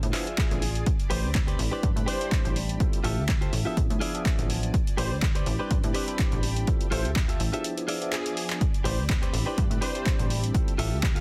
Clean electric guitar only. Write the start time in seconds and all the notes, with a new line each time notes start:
0.13 F4 G#4 D5 E5
1.10 G4 B4 C5 D5
1.47 G4 B4 C5 D5
1.71 G4 B4 C5 D5
2.06 G4 B4 C5 D5
3.04 F4 G4 A4 E5
3.41 F4 G4 A4 C5
3.65 F4 G4 A4 E5
4.00 F4 G#4 D5 E5
4.97 G4 B4 C5 D5
5.35 G4 B4 C5 D5
5.59 G4 B4 C5 D5
5.94 G4 B4 C5 D5
6.91 F4 G4 A4 E5
7.28 F4 G4 A4 E5
7.53 F4 G4 A4 E5
7.88 F4 G#4 D5 E5
8.84 G4 B4 C5 D5
9.22 G4 B4 C5 D5
9.46 G4 B4 C5 D5
9.81 G4 B4 C5 D5
10.78 F4 G4 A4 E5
11.15 F4 G4 A4 F5